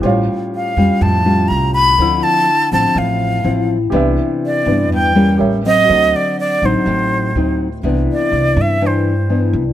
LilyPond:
<<
  \new Staff \with { instrumentName = "Flute" } { \time 4/4 \key c \major \tempo 4 = 123 r4 eis''4 a''4 bes''8 b''8~ | b''8 a''4 a''8 f''4. r8 | r4 d''4 g''4 r8 ees''8~ | ees''8 d''8 d''8 c''2 r8 |
r8 d''4 e''8 c''4. r8 | }
  \new Staff \with { instrumentName = "Grand piano" } { \time 4/4 \key c \major <g' bis' cis'' eis''>1 | <a' c'' e'''>1 | <g' b' d'' e''>2. <g' bes' cis'' e''>4 | <fis' a' c'' ees''>1 |
r1 | }
  \new Staff \with { instrumentName = "Nylon-string guitar" } { \time 4/4 \key c \major << { <g cis' eis'>4. <g cis' eis'>4 <g cis' eis'>4. | <f c' e'>4 r8 <f c'>4. <f c' e'>8 r8 | <e b d'>4. <e b d'>4 <g bes des'>4 <fis c'>8~ | <fis c'>4. <fis c' ees'>4. <fis c' ees'>8 r8 |
<e b d'>2 <e d'>8 r8 <e b d'>8 r8 | } \\ { a,2 a,2 | d2 a,2 | c2 g,4 r4 | d2 a,2 |
c2 g,2 | } >> }
  \new Staff \with { instrumentName = "Upright bass" } { \clef bass \time 4/4 \key c \major a,,8 r4 eis,16 r16 eis,4 bis,,4 | d,8 r4 a,,16 r16 a,,4 a,,4 | c,8 r4 g,8 e,4 a,,4 | d,8 r4 a,,16 r16 a,,4 d,4 |
c,8 r8 c,8 g,2 c,8 | }
>>